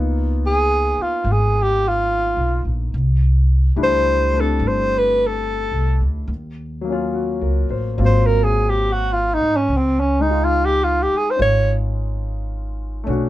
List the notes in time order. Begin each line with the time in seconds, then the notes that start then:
Already playing: C#2 A#3 B3 D#4 F4
0.46 G#4
0.98 muted upright bass stroke
1.02 F4
1.24 G#1
1.32 G#4
1.62 G4
1.88 F4
2.37 B1
2.65 A#1
2.94 C2
3.76 C#2 G3 A3 D4 E4
3.83 C5
4.33 A3 C4 D4
4.41 A4
4.59 G1
4.68 C5
4.98 B4
5.27 A4
5.72 C2
6.01 D2
6.28 D#2
6.81 F#3 A#3
6.89 C#4 F4
7.13 F#4
7.41 C#2 A#4
7.69 A1 C5
7.98 G#1 F#3 A#3 C4 F4
8.05 C5
8.26 A#4
8.44 G#4
8.69 G4
8.93 F#4
9.13 F4
9.34 D#4
9.40 G#2
9.56 C#4
9.68 C#2
9.77 C4
10.00 C#4
10.20 G#3 D#4
10.26 D#4
10.30 F4
10.44 F4
10.65 G4
10.84 F4
11.03 G4
11.11 muted upright bass stroke
11.17 G#4
11.31 C5
11.36 G#1 C#4 F4
11.42 C#5
13.04 B1 A3 C#4 D4
13.10 F#4